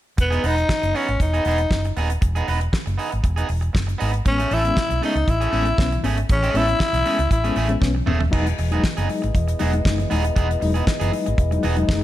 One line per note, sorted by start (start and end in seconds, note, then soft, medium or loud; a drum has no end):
0.17 0.37 E1 medium
0.17 0.48 B3 medium
0.17 muted clean electric guitar stroke soft
0.17 kick loud
0.17 closed hi-hat medium
0.30 0.42 B3 medium
0.30 0.43 D#4 medium
0.30 0.43 G#4 medium
0.30 closed hi-hat soft
0.43 0.62 E1 medium
0.43 0.54 B3 medium
0.43 0.55 D#4 medium
0.43 0.97 D#4 loud
0.43 0.55 B4 medium
0.43 open hi-hat medium
0.57 muted clean electric guitar stroke soft
0.57 closed hi-hat soft
0.69 muted clean electric guitar stroke soft
0.69 kick loud
0.69 snare loud
0.82 0.92 F#1 medium
0.82 muted clean electric guitar stroke soft
0.82 closed hi-hat soft
0.94 1.08 B3 medium
0.94 1.21 C#4 medium
0.94 1.08 D#4 medium
0.94 1.07 G#4 medium
0.94 open hi-hat soft
1.08 1.17 G#1 medium
1.08 muted clean electric guitar stroke soft
1.08 closed hi-hat soft
1.20 1.38 E1 medium
1.20 1.94 D#4 medium
1.20 muted clean electric guitar stroke soft
1.20 kick medium
1.20 closed hi-hat medium
1.33 1.44 B3 soft
1.33 1.44 D#4 medium
1.33 1.43 G#4 medium
1.33 closed hi-hat soft
1.45 1.64 E1 medium
1.45 1.60 B3 medium
1.45 1.59 D#4 medium
1.45 1.58 G#4 medium
1.45 open hi-hat soft
1.58 muted clean electric guitar stroke soft
1.58 closed hi-hat soft
1.71 1.89 F#1 medium
1.71 muted clean electric guitar stroke soft
1.71 kick loud
1.71 snare medium
1.84 muted clean electric guitar stroke soft
1.84 closed hi-hat soft
1.97 2.15 D#1 medium
1.97 2.10 B3 medium
1.97 2.10 D#4 medium
1.97 2.09 G#4 medium
1.97 open hi-hat soft
2.10 muted clean electric guitar stroke soft
2.10 closed hi-hat medium
2.21 2.40 E1 medium
2.21 muted clean electric guitar stroke soft
2.21 kick loud
2.21 closed hi-hat medium
2.35 2.46 B3 medium
2.35 2.47 D#4 medium
2.35 2.48 G#4 medium
2.35 closed hi-hat soft
2.47 2.66 E1 medium
2.47 2.58 B3 medium
2.47 2.59 D#4 medium
2.47 2.59 B4 medium
2.47 open hi-hat medium
2.60 muted clean electric guitar stroke soft
2.60 closed hi-hat soft
2.73 muted clean electric guitar stroke soft
2.73 kick loud
2.73 snare loud
2.86 2.95 F#1 medium
2.86 muted clean electric guitar stroke soft
2.86 closed hi-hat soft
2.98 3.12 B3 medium
2.98 3.11 D#4 medium
2.98 3.10 G#4 medium
2.98 open hi-hat medium
3.11 3.21 G#1 medium
3.11 muted clean electric guitar stroke soft
3.11 closed hi-hat soft
3.23 3.42 E1 medium
3.23 muted clean electric guitar stroke soft
3.23 kick medium
3.23 closed hi-hat medium
3.36 3.47 B3 medium
3.36 3.48 D#4 medium
3.36 3.49 G#4 medium
3.36 closed hi-hat soft
3.49 3.68 E1 medium
3.49 muted clean electric guitar stroke soft
3.49 open hi-hat soft
3.61 muted clean electric guitar stroke soft
3.61 closed hi-hat soft
3.73 3.93 F#1 medium
3.73 muted clean electric guitar stroke soft
3.73 kick loud
3.73 snare medium
3.87 muted clean electric guitar stroke soft
3.87 closed hi-hat soft
3.98 4.19 G#1 medium
3.98 4.13 B3 medium
3.98 4.12 D#4 medium
3.98 4.11 G#4 loud
3.98 open hi-hat medium
4.12 muted clean electric guitar stroke soft
4.12 closed hi-hat medium
4.25 4.44 A1 medium
4.25 4.40 G#3 medium
4.25 4.40 B3 medium
4.25 4.40 C#4 loud
4.25 4.55 C#4 loud
4.25 muted clean electric guitar stroke soft
4.25 kick loud
4.25 closed hi-hat medium
4.38 4.49 A3 medium
4.38 4.50 C#4 medium
4.38 4.51 G#4 medium
4.38 closed hi-hat soft
4.50 4.69 A1 medium
4.50 4.65 A2 medium
4.50 4.65 E3 medium
4.50 4.62 A3 medium
4.50 4.62 C#4 medium
4.50 5.04 E4 loud
4.50 4.63 A4 medium
4.50 open hi-hat medium
4.64 4.77 G#3 medium
4.64 4.77 B3 medium
4.64 4.77 C#4 medium
4.64 muted clean electric guitar stroke soft
4.64 closed hi-hat soft
4.76 4.91 A2 medium
4.76 4.90 E3 medium
4.76 muted clean electric guitar stroke soft
4.76 kick loud
4.76 snare loud
4.90 4.99 B1 medium
4.90 muted clean electric guitar stroke soft
4.90 closed hi-hat soft
5.01 5.16 G#3 medium
5.01 5.16 A3 medium
5.01 5.15 B3 medium
5.01 5.14 C#4 medium
5.01 5.15 C#4 medium
5.01 5.31 D#4 medium
5.01 5.14 G#4 medium
5.01 open hi-hat soft
5.15 5.24 C#2 medium
5.15 5.21 B3 soft
5.15 5.21 C#4 soft
5.15 muted clean electric guitar stroke soft
5.15 closed hi-hat soft
5.27 5.46 A1 medium
5.27 5.42 A2 soft
5.27 5.41 E3 medium
5.27 6.05 E4 medium
5.27 muted clean electric guitar stroke soft
5.27 kick loud
5.27 closed hi-hat medium
5.41 5.50 A3 soft
5.41 5.51 C#4 medium
5.41 5.51 G#4 medium
5.41 closed hi-hat soft
5.51 5.71 A1 medium
5.51 5.67 G#3 medium
5.51 5.66 A3 medium
5.51 5.66 B3 medium
5.51 5.66 C#4 medium
5.51 5.65 C#4 medium
5.51 5.65 G#4 medium
5.51 open hi-hat soft
5.66 5.72 B3 soft
5.66 5.71 C#4 soft
5.66 muted clean electric guitar stroke soft
5.66 closed hi-hat soft
5.78 5.97 B1 medium
5.78 5.93 B3 medium
5.78 5.93 C#4 medium
5.78 muted clean electric guitar stroke soft
5.78 kick loud
5.78 snare medium
5.92 6.04 A2 medium
5.92 6.04 E3 medium
5.92 muted clean electric guitar stroke soft
5.92 closed hi-hat soft
6.03 6.22 G#1 medium
6.03 6.18 A3 medium
6.03 6.18 B3 medium
6.03 6.18 C#4 medium
6.03 6.17 G#4 medium
6.03 open hi-hat medium
6.17 muted clean electric guitar stroke soft
6.17 closed hi-hat medium
6.29 6.48 A1 loud
6.29 6.43 A2 medium
6.29 6.43 E3 medium
6.29 6.59 C#4 medium
6.29 muted clean electric guitar stroke soft
6.29 kick loud
6.29 closed hi-hat medium
6.43 6.53 A3 medium
6.43 6.54 C#4 medium
6.43 6.56 G#4 medium
6.43 closed hi-hat soft
6.54 6.73 A1 medium
6.54 6.69 G#3 medium
6.54 6.66 A3 medium
6.54 6.67 B3 medium
6.54 6.67 C#4 medium
6.54 6.66 C#4 medium
6.54 7.32 E4 loud
6.54 6.66 A4 medium
6.54 open hi-hat medium
6.68 6.73 B3 soft
6.68 6.74 C#4 soft
6.68 muted clean electric guitar stroke medium
6.68 closed hi-hat soft
6.80 6.86 B3 soft
6.80 6.86 C#4 soft
6.80 muted clean electric guitar stroke soft
6.80 kick loud
6.80 snare loud
6.93 7.02 B1 medium
6.93 7.06 A2 medium
6.93 7.06 E3 soft
6.93 muted clean electric guitar stroke soft
6.93 closed hi-hat medium
7.05 7.19 G#3 medium
7.05 7.20 A3 medium
7.05 7.19 B3 medium
7.05 7.20 C#4 medium
7.05 7.19 C#4 medium
7.05 7.17 G#4 medium
7.05 open hi-hat medium
7.19 7.28 C#2 medium
7.19 muted clean electric guitar stroke soft
7.19 closed hi-hat soft
7.30 7.49 A1 medium
7.30 7.79 E4 medium
7.30 muted clean electric guitar stroke soft
7.30 kick medium
7.30 closed hi-hat medium
7.44 7.57 G#3 medium
7.44 7.55 A3 soft
7.44 7.57 B3 medium
7.44 7.57 C#4 medium
7.44 7.54 C#4 soft
7.44 7.54 G#4 medium
7.44 closed hi-hat soft
7.56 7.75 A1 medium
7.56 7.70 A2 medium
7.56 7.70 E3 soft
7.56 7.70 A3 medium
7.56 7.69 C#4 medium
7.56 7.68 G#4 loud
7.56 open hi-hat medium
7.68 7.82 G#3 medium
7.68 7.80 B3 medium
7.68 7.81 C#4 medium
7.68 muted clean electric guitar stroke soft
7.68 closed hi-hat soft
7.81 8.00 B1 medium
7.81 7.96 B3 medium
7.81 7.96 C#4 medium
7.81 muted clean electric guitar stroke soft
7.81 kick loud
7.81 snare medium
7.94 8.07 A2 medium
7.94 8.07 E3 medium
7.94 muted clean electric guitar stroke soft
8.06 8.26 D#1 medium
8.06 8.21 A3 medium
8.06 8.21 B3 medium
8.06 8.20 C#4 medium
8.06 8.21 C#4 medium
8.06 8.19 G#4 medium
8.06 mid tom medium
8.20 muted clean electric guitar stroke soft
8.20 floor tom medium
8.31 8.51 E1 loud
8.31 8.46 F#3 medium
8.31 8.46 G#3 medium
8.31 8.47 B3 medium
8.31 12.04 B3 medium
8.31 8.46 D#4 loud
8.31 8.46 D#4 medium
8.31 12.04 E4 medium
8.31 12.04 G#4 medium
8.31 8.45 G#4 medium
8.31 12.04 D#5 medium
8.31 kick loud
8.31 crash medium
8.46 muted clean electric guitar stroke soft
8.46 closed hi-hat medium
8.58 8.77 E1 medium
8.58 8.72 E3 medium
8.58 muted clean electric guitar stroke soft
8.58 open hi-hat medium
8.71 8.84 F#3 medium
8.71 8.84 G#3 medium
8.71 8.82 B3 medium
8.71 8.84 D#4 medium
8.71 8.82 D#4 medium
8.71 8.82 G#4 medium
8.71 closed hi-hat soft
8.84 8.98 E3 medium
8.84 kick loud
8.84 snare loud
8.97 9.06 F#1 loud
8.97 9.08 B3 medium
8.97 9.09 D#4 medium
8.97 9.09 G#4 medium
8.97 closed hi-hat medium
9.09 9.23 F#3 medium
9.09 9.22 G#3 medium
9.09 9.21 D#4 medium
9.09 muted clean electric guitar stroke soft
9.09 open hi-hat medium
9.22 9.32 G#1 medium
9.22 9.28 G#3 soft
9.22 9.28 D#4 soft
9.22 muted clean electric guitar stroke medium
9.22 closed hi-hat soft
9.34 9.53 E1 medium
9.34 9.48 E3 medium
9.34 kick medium
9.34 closed hi-hat medium
9.48 muted clean electric guitar stroke soft
9.48 closed hi-hat soft
9.59 9.79 E1 medium
9.59 9.74 F#3 medium
9.59 9.72 G#3 medium
9.59 9.73 B3 medium
9.59 9.72 D#4 medium
9.59 9.71 G#4 medium
9.59 open hi-hat medium
9.72 9.78 G#3 soft
9.72 9.78 D#4 soft
9.72 muted clean electric guitar stroke medium
9.72 closed hi-hat soft
9.85 10.04 F#1 medium
9.85 9.99 G#3 medium
9.85 9.99 D#4 medium
9.85 kick loud
9.85 snare loud
9.98 10.11 E3 medium
9.98 muted clean electric guitar stroke soft
9.98 closed hi-hat soft
10.10 10.30 D#1 medium
10.10 10.24 G#3 medium
10.10 10.24 B3 medium
10.10 10.25 D#4 medium
10.10 10.24 D#4 loud
10.10 10.23 G#4 loud
10.10 open hi-hat medium
10.24 muted clean electric guitar stroke soft
10.24 closed hi-hat medium
10.36 10.54 E1 medium
10.36 10.50 E3 medium
10.36 10.50 B3 medium
10.36 10.49 D#4 medium
10.36 10.48 G#4 medium
10.36 kick loud
10.36 closed hi-hat medium
10.49 muted clean electric guitar stroke medium
10.49 closed hi-hat soft
10.60 10.80 E1 loud
10.60 10.75 F#3 medium
10.60 10.74 G#3 medium
10.60 10.75 D#4 medium
10.60 muted clean electric guitar stroke soft
10.60 open hi-hat medium
10.74 10.80 G#3 soft
10.74 10.85 B3 medium
10.74 10.85 D#4 medium
10.74 10.80 D#4 soft
10.74 10.84 G#4 medium
10.74 closed hi-hat soft
10.86 10.93 G#3 soft
10.86 10.93 D#4 soft
10.86 muted clean electric guitar stroke soft
10.86 kick loud
10.86 snare loud
11.00 11.09 F#1 medium
11.00 11.13 E3 medium
11.00 11.11 B3 medium
11.00 11.12 D#4 medium
11.00 11.12 G#4 medium
11.00 closed hi-hat medium
11.12 11.26 F#3 medium
11.12 11.26 G#3 medium
11.12 11.27 D#4 medium
11.12 muted clean electric guitar stroke soft
11.12 open hi-hat medium
11.26 11.36 G#1 medium
11.26 muted clean electric guitar stroke soft
11.26 closed hi-hat soft
11.38 11.56 E1 medium
11.38 kick loud
11.38 closed hi-hat medium
11.51 11.64 F#3 medium
11.51 11.64 G#3 medium
11.51 11.64 D#4 medium
11.51 muted clean electric guitar stroke soft
11.51 closed hi-hat soft
11.63 11.82 E1 medium
11.63 11.77 E3 medium
11.63 11.77 B3 medium
11.63 11.77 D#4 medium
11.63 11.75 G#4 medium
11.63 open hi-hat medium
11.76 11.89 F#3 medium
11.76 11.87 G#3 medium
11.76 11.87 D#4 medium
11.76 muted clean electric guitar stroke soft
11.76 closed hi-hat soft
11.88 12.04 F#1 medium
11.88 12.02 G#3 medium
11.88 12.02 D#4 medium
11.88 kick loud
11.88 snare loud